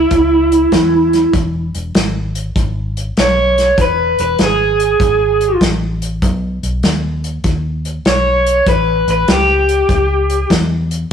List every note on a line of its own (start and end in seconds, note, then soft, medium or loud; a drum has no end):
0.00 1.31 E4 medium
0.11 0.65 C#2 medium
0.11 kick medium
0.11 closed hi-hat medium
0.52 closed hi-hat medium
0.72 1.26 E2 medium
0.72 kick medium
0.72 snare medium
0.72 closed hi-hat medium
1.13 snare soft
1.13 closed hi-hat medium
1.33 1.69 E1 medium
1.33 kick loud
1.33 closed hi-hat medium
1.75 1.93 E1 medium
1.75 closed hi-hat medium
1.95 2.49 G#1 medium
1.95 snare loud
1.95 closed hi-hat medium
2.35 closed hi-hat medium
2.56 3.10 G#1 medium
2.56 kick loud
2.56 closed hi-hat medium
2.97 closed hi-hat medium
3.17 3.71 B1 medium
3.17 3.78 C#5 medium
3.17 snare medium
3.17 closed hi-hat medium
3.58 snare soft
3.58 closed hi-hat medium
3.78 4.14 E1 medium
3.78 4.19 B4 medium
3.78 kick loud
3.78 closed hi-hat medium
4.19 4.37 E1 medium
4.19 4.40 B4 medium
4.19 closed hi-hat medium
4.39 4.93 G#1 medium
4.39 snare medium
4.39 closed hi-hat medium
4.43 5.60 G#4 medium
4.80 closed hi-hat medium
5.00 5.54 G#1 medium
5.00 kick loud
5.00 closed hi-hat medium
5.41 closed hi-hat medium
5.61 6.22 A1 medium
5.61 kick medium
5.61 snare medium
5.61 closed hi-hat medium
6.02 closed hi-hat medium
6.22 6.58 B1 medium
6.22 kick loud
6.22 closed hi-hat medium
6.63 6.81 B1 medium
6.63 closed hi-hat medium
6.83 7.38 D#2 medium
6.83 snare medium
6.83 closed hi-hat medium
7.24 closed hi-hat medium
7.44 7.98 D#2 medium
7.44 kick loud
7.44 closed hi-hat medium
7.85 closed hi-hat medium
8.05 8.60 B1 medium
8.05 8.66 C#5 medium
8.05 snare medium
8.05 closed hi-hat medium
8.46 closed hi-hat medium
8.66 9.03 A1 medium
8.66 9.08 B4 medium
8.66 kick loud
8.66 closed hi-hat medium
9.07 9.26 A1 medium
9.07 9.29 B4 medium
9.07 closed hi-hat medium
9.28 9.82 C#2 medium
9.28 10.48 G4 medium
9.28 snare loud
9.28 closed hi-hat medium
9.69 closed hi-hat medium
9.89 10.43 C#2 medium
9.89 kick loud
9.89 closed hi-hat medium
10.30 closed hi-hat medium
10.50 11.04 E2 medium
10.50 kick medium
10.50 snare medium
10.50 closed hi-hat medium
10.91 closed hi-hat medium